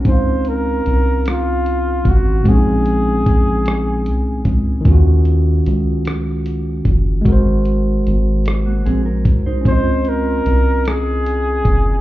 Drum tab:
HH |xxxxxx|xxxxxx|xxxxxx|xxxxxx|
SD |---r--|---r--|---r--|---r--|
BD |o----o|o-o--o|o----o|o----o|

HH |xxxxxx|
SD |---r--|
BD |o----o|